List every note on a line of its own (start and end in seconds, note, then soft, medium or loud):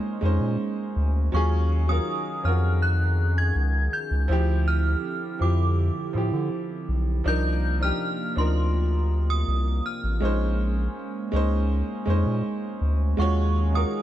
0.00 0.21 G#3 medium
0.00 1.30 G#3 medium
0.00 1.29 A#3 medium
0.00 0.22 C#4 medium
0.00 4.25 C#4 medium
0.00 0.24 D#4 medium
0.00 0.25 C5 loud
0.00 0.19 F6 medium
0.21 0.39 F2 medium
0.21 1.25 G#3 medium
0.21 1.26 C#4 medium
0.21 1.26 D#4 medium
0.25 1.27 C5 medium
0.41 0.57 A#2 medium
0.96 1.29 D2 loud
1.32 1.99 D#2 loud
1.32 4.26 D#3 medium
1.32 1.84 F#3 medium
1.32 1.85 C#4 medium
1.32 4.26 D#4 medium
1.32 1.86 F4 medium
1.32 4.26 G#4 medium
1.32 1.91 C#6 medium
1.36 1.87 G#4 loud
1.87 2.40 F#3 medium
1.87 2.41 C#4 medium
1.87 2.41 F4 medium
1.87 2.46 D#6 loud
1.92 2.42 A#4 medium
2.43 3.52 F2 medium
2.43 2.50 F3 medium
2.43 3.82 C#4 medium
2.43 3.83 F4 medium
2.43 2.83 F6 medium
2.47 3.85 F#4 medium
2.47 3.84 A#4 medium
2.82 3.39 F#6 loud
3.38 3.95 G#6 loud
3.56 3.89 C#2 loud
3.93 4.69 G6 loud
4.11 4.28 C#2 medium
4.28 4.96 D2 loud
4.28 7.22 D3 medium
4.28 5.32 F3 loud
4.28 7.23 C4 medium
4.28 5.33 C4 medium
4.28 7.23 E4 medium
4.28 5.34 E4 medium
4.28 7.23 G4 medium
4.32 5.34 G4 loud
4.68 5.37 F6 loud
5.39 5.90 F2 medium
5.39 6.09 F3 medium
5.39 6.10 C4 medium
5.39 6.10 E4 medium
5.39 6.85 D6 medium
5.43 6.11 G4 medium
6.13 6.31 A2 medium
6.13 7.17 F3 medium
6.13 7.18 C4 medium
6.13 7.19 E4 medium
6.18 7.20 G4 medium
6.33 6.50 D3 medium
6.89 7.22 B1 loud
7.24 7.92 C2 loud
7.24 10.19 C3 medium
7.24 7.77 F3 medium
7.24 13.14 A#3 medium
7.24 10.19 C4 medium
7.24 7.77 D4 medium
7.24 7.78 D#4 medium
7.24 10.19 F4 medium
7.24 7.84 G6 loud
7.29 7.79 A#4 loud
7.80 8.32 F3 medium
7.80 8.33 D4 medium
7.80 8.34 D#4 medium
7.80 8.39 F6 loud
7.84 8.35 G4 medium
8.36 9.44 D2 medium
8.36 9.74 F3 medium
8.36 9.75 D4 medium
8.36 9.76 D#4 medium
8.36 9.33 C6 medium
8.40 9.76 A#4 medium
9.30 9.87 D#6 loud
9.48 9.81 C2 medium
9.86 12.04 F6 medium
10.04 10.20 A1 medium
10.20 10.88 A#1 loud
10.20 11.25 G#3 medium
10.20 13.16 G#3 medium
10.20 11.25 C#4 medium
10.20 13.16 C#4 medium
10.20 11.26 D#4 medium
10.25 11.27 C5 loud
11.32 11.83 C#2 loud
11.32 12.01 G#3 medium
11.32 12.02 C#4 medium
11.32 12.03 D#4 medium
11.36 12.04 C5 loud
12.06 12.24 F2 medium
12.06 13.10 G#3 medium
12.06 13.11 C#4 medium
12.06 13.11 D#4 medium
12.10 13.12 C5 loud
12.26 12.42 A#2 medium
12.81 13.14 D2 loud
13.17 13.84 D#2 loud
13.17 14.02 D#3 medium
13.17 13.69 G#3 medium
13.17 14.02 C#4 medium
13.17 14.02 D#4 medium
13.17 13.70 F4 medium
13.17 13.71 F#4 medium
13.17 14.02 G#4 medium
13.17 13.76 C#6 medium
13.21 13.72 C#5 loud
13.72 14.02 G#3 medium
13.72 14.02 F4 medium
13.72 14.02 F#4 medium
13.72 14.02 D#6 medium
13.77 14.02 A#4 medium